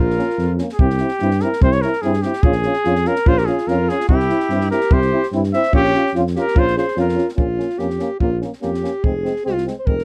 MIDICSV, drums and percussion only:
0, 0, Header, 1, 2, 480
1, 0, Start_track
1, 0, Tempo, 412939
1, 917, Time_signature, 2, 2, 24, 8
1, 11670, End_track
2, 0, Start_track
2, 0, Title_t, "Drums"
2, 120, Note_on_c, 9, 38, 19
2, 222, Note_off_c, 9, 38, 0
2, 222, Note_on_c, 9, 38, 27
2, 338, Note_off_c, 9, 38, 0
2, 350, Note_on_c, 9, 38, 21
2, 450, Note_off_c, 9, 38, 0
2, 450, Note_on_c, 9, 38, 25
2, 566, Note_off_c, 9, 38, 0
2, 678, Note_on_c, 9, 38, 26
2, 794, Note_off_c, 9, 38, 0
2, 807, Note_on_c, 9, 38, 24
2, 919, Note_on_c, 9, 36, 91
2, 924, Note_off_c, 9, 38, 0
2, 1035, Note_off_c, 9, 36, 0
2, 1046, Note_on_c, 9, 38, 24
2, 1137, Note_off_c, 9, 38, 0
2, 1137, Note_on_c, 9, 38, 29
2, 1253, Note_off_c, 9, 38, 0
2, 1261, Note_on_c, 9, 38, 28
2, 1377, Note_off_c, 9, 38, 0
2, 1383, Note_on_c, 9, 38, 32
2, 1500, Note_off_c, 9, 38, 0
2, 1519, Note_on_c, 9, 38, 29
2, 1627, Note_off_c, 9, 38, 0
2, 1627, Note_on_c, 9, 38, 28
2, 1743, Note_off_c, 9, 38, 0
2, 1777, Note_on_c, 9, 38, 30
2, 1878, Note_on_c, 9, 36, 93
2, 1893, Note_off_c, 9, 38, 0
2, 1994, Note_off_c, 9, 36, 0
2, 1997, Note_on_c, 9, 38, 22
2, 2113, Note_off_c, 9, 38, 0
2, 2116, Note_on_c, 9, 38, 31
2, 2232, Note_off_c, 9, 38, 0
2, 2244, Note_on_c, 9, 38, 25
2, 2348, Note_off_c, 9, 38, 0
2, 2348, Note_on_c, 9, 38, 25
2, 2465, Note_off_c, 9, 38, 0
2, 2481, Note_on_c, 9, 38, 29
2, 2585, Note_off_c, 9, 38, 0
2, 2585, Note_on_c, 9, 38, 28
2, 2701, Note_off_c, 9, 38, 0
2, 2711, Note_on_c, 9, 38, 31
2, 2826, Note_on_c, 9, 36, 102
2, 2827, Note_off_c, 9, 38, 0
2, 2933, Note_on_c, 9, 38, 23
2, 2942, Note_off_c, 9, 36, 0
2, 3049, Note_off_c, 9, 38, 0
2, 3049, Note_on_c, 9, 38, 29
2, 3165, Note_off_c, 9, 38, 0
2, 3177, Note_on_c, 9, 38, 24
2, 3293, Note_off_c, 9, 38, 0
2, 3303, Note_on_c, 9, 38, 27
2, 3419, Note_off_c, 9, 38, 0
2, 3435, Note_on_c, 9, 38, 28
2, 3545, Note_off_c, 9, 38, 0
2, 3545, Note_on_c, 9, 38, 25
2, 3661, Note_off_c, 9, 38, 0
2, 3669, Note_on_c, 9, 38, 27
2, 3786, Note_off_c, 9, 38, 0
2, 3793, Note_on_c, 9, 36, 97
2, 3909, Note_off_c, 9, 36, 0
2, 3928, Note_on_c, 9, 38, 24
2, 4029, Note_off_c, 9, 38, 0
2, 4029, Note_on_c, 9, 38, 28
2, 4145, Note_off_c, 9, 38, 0
2, 4162, Note_on_c, 9, 38, 25
2, 4278, Note_off_c, 9, 38, 0
2, 4278, Note_on_c, 9, 38, 27
2, 4394, Note_off_c, 9, 38, 0
2, 4524, Note_on_c, 9, 38, 26
2, 4641, Note_off_c, 9, 38, 0
2, 4654, Note_on_c, 9, 38, 27
2, 4752, Note_on_c, 9, 36, 81
2, 4770, Note_off_c, 9, 38, 0
2, 4868, Note_off_c, 9, 36, 0
2, 4879, Note_on_c, 9, 38, 21
2, 4990, Note_off_c, 9, 38, 0
2, 4990, Note_on_c, 9, 38, 30
2, 5106, Note_off_c, 9, 38, 0
2, 5116, Note_on_c, 9, 38, 25
2, 5227, Note_off_c, 9, 38, 0
2, 5227, Note_on_c, 9, 38, 24
2, 5343, Note_off_c, 9, 38, 0
2, 5357, Note_on_c, 9, 38, 30
2, 5474, Note_off_c, 9, 38, 0
2, 5478, Note_on_c, 9, 38, 28
2, 5589, Note_off_c, 9, 38, 0
2, 5589, Note_on_c, 9, 38, 27
2, 5704, Note_on_c, 9, 36, 97
2, 5705, Note_off_c, 9, 38, 0
2, 5821, Note_off_c, 9, 36, 0
2, 5832, Note_on_c, 9, 38, 22
2, 5949, Note_off_c, 9, 38, 0
2, 6080, Note_on_c, 9, 38, 24
2, 6186, Note_off_c, 9, 38, 0
2, 6186, Note_on_c, 9, 38, 24
2, 6303, Note_off_c, 9, 38, 0
2, 6318, Note_on_c, 9, 38, 26
2, 6431, Note_off_c, 9, 38, 0
2, 6431, Note_on_c, 9, 38, 26
2, 6544, Note_off_c, 9, 38, 0
2, 6544, Note_on_c, 9, 38, 25
2, 6660, Note_off_c, 9, 38, 0
2, 6662, Note_on_c, 9, 36, 75
2, 6779, Note_off_c, 9, 36, 0
2, 6794, Note_on_c, 9, 38, 20
2, 6908, Note_off_c, 9, 38, 0
2, 6908, Note_on_c, 9, 38, 25
2, 7025, Note_off_c, 9, 38, 0
2, 7051, Note_on_c, 9, 38, 22
2, 7153, Note_off_c, 9, 38, 0
2, 7153, Note_on_c, 9, 38, 27
2, 7269, Note_off_c, 9, 38, 0
2, 7288, Note_on_c, 9, 38, 27
2, 7391, Note_off_c, 9, 38, 0
2, 7391, Note_on_c, 9, 38, 26
2, 7507, Note_off_c, 9, 38, 0
2, 7530, Note_on_c, 9, 38, 23
2, 7624, Note_on_c, 9, 36, 87
2, 7647, Note_off_c, 9, 38, 0
2, 7741, Note_off_c, 9, 36, 0
2, 7760, Note_on_c, 9, 38, 22
2, 7876, Note_off_c, 9, 38, 0
2, 7878, Note_on_c, 9, 38, 29
2, 7995, Note_off_c, 9, 38, 0
2, 7999, Note_on_c, 9, 38, 20
2, 8099, Note_off_c, 9, 38, 0
2, 8099, Note_on_c, 9, 38, 24
2, 8215, Note_off_c, 9, 38, 0
2, 8239, Note_on_c, 9, 38, 28
2, 8349, Note_off_c, 9, 38, 0
2, 8349, Note_on_c, 9, 38, 24
2, 8465, Note_off_c, 9, 38, 0
2, 8469, Note_on_c, 9, 38, 25
2, 8578, Note_on_c, 9, 36, 77
2, 8585, Note_off_c, 9, 38, 0
2, 8695, Note_off_c, 9, 36, 0
2, 8831, Note_on_c, 9, 38, 24
2, 8947, Note_off_c, 9, 38, 0
2, 8948, Note_on_c, 9, 38, 19
2, 9055, Note_off_c, 9, 38, 0
2, 9055, Note_on_c, 9, 38, 23
2, 9171, Note_off_c, 9, 38, 0
2, 9184, Note_on_c, 9, 38, 23
2, 9291, Note_off_c, 9, 38, 0
2, 9291, Note_on_c, 9, 38, 25
2, 9407, Note_off_c, 9, 38, 0
2, 9536, Note_on_c, 9, 36, 68
2, 9653, Note_off_c, 9, 36, 0
2, 9784, Note_on_c, 9, 38, 24
2, 9901, Note_off_c, 9, 38, 0
2, 9915, Note_on_c, 9, 38, 25
2, 10020, Note_off_c, 9, 38, 0
2, 10020, Note_on_c, 9, 38, 24
2, 10137, Note_off_c, 9, 38, 0
2, 10163, Note_on_c, 9, 38, 26
2, 10280, Note_off_c, 9, 38, 0
2, 10281, Note_on_c, 9, 38, 24
2, 10397, Note_off_c, 9, 38, 0
2, 10507, Note_on_c, 9, 36, 77
2, 10623, Note_off_c, 9, 36, 0
2, 10757, Note_on_c, 9, 38, 26
2, 10873, Note_off_c, 9, 38, 0
2, 10882, Note_on_c, 9, 38, 19
2, 10999, Note_off_c, 9, 38, 0
2, 11004, Note_on_c, 9, 38, 24
2, 11120, Note_off_c, 9, 38, 0
2, 11133, Note_on_c, 9, 38, 25
2, 11248, Note_off_c, 9, 38, 0
2, 11248, Note_on_c, 9, 38, 26
2, 11364, Note_off_c, 9, 38, 0
2, 11472, Note_on_c, 9, 36, 75
2, 11588, Note_off_c, 9, 36, 0
2, 11608, Note_on_c, 9, 38, 21
2, 11670, Note_off_c, 9, 38, 0
2, 11670, End_track
0, 0, End_of_file